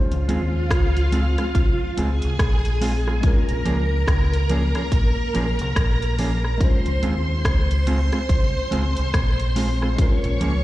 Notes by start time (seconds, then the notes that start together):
Already playing: G#3 C#4 F4 C5 F5
0.12 C#2, closed hi-hat
0.28 D#2 G#3 C4 F4 G#4, closed hi-hat
0.71 C#2, kick, cross-stick, closed hi-hat
0.97 closed hi-hat
1.12 G#3 C4 F4 G#4, closed hi-hat
1.38 G#3 C4 F4 G#4, cross-stick, closed hi-hat
1.55 C2, kick, closed hi-hat
1.97 C#2 G#3 C4 F4 G#4 G#5, closed hi-hat
2.22 C2, closed hi-hat
2.39 A#1, kick, cross-stick, closed hi-hat
2.65 closed hi-hat
2.81 G#3 C4 F4 G#4, open hi-hat
3.07 G#3 C4 F4 G#4, cross-stick
3.21 G#3 C#4 F4 A#4 A#5, kick, closed hi-hat
3.27 A#4
3.49 A#1, closed hi-hat
3.65 C#2 F3 A#3 C#4 G#4, closed hi-hat
4.08 C#2, kick, cross-stick, closed hi-hat
4.34 closed hi-hat
4.49 F3 A#3 C#4 G#4, closed hi-hat
4.75 F3 A#3 C#4 G#4, cross-stick, closed hi-hat
4.92 A#1, kick, closed hi-hat
5.34 A#1 F3 A#3 C#4 G#4, closed hi-hat
5.59 C2, closed hi-hat
5.76 A#1, kick, cross-stick, closed hi-hat
6.02 closed hi-hat
6.18 F3 A#3 C#4 G#4, open hi-hat
6.45 cross-stick
6.58 G#3 C#4 C5 C6, kick, closed hi-hat
6.62 F4 C5
6.86 C#2, closed hi-hat
7.02 D#2 G#3 C4 F4 G#4, closed hi-hat
7.45 C#2, kick, cross-stick, closed hi-hat
7.71 closed hi-hat
7.87 G#3 C4 F4 G#4, closed hi-hat
8.12 G#3 C4 F4 G#4, cross-stick, closed hi-hat
8.29 C2, kick, closed hi-hat
8.71 C#2 G#3 C4 F4 G#4, closed hi-hat
8.97 C2, closed hi-hat
9.14 A#1, kick, cross-stick, closed hi-hat
9.40 closed hi-hat
9.56 G#3 C4 F4 G#4, open hi-hat
9.82 G#3 C4 F4 G#4, cross-stick
9.96 G#3 C#4 F4 C#5 C#6, kick, closed hi-hat
10.02 A#4
10.24 A#1, closed hi-hat
10.40 C#2 F3 A#3 C#4 G#4, closed hi-hat